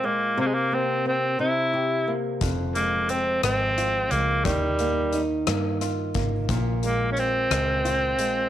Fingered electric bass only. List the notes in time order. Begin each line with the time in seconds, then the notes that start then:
2.41 F1
3.43 G#1
4.11 C#2
4.45 D#2
5.47 G2
6.15 G#1
6.49 A#1
7.51 C#2
8.18 A#1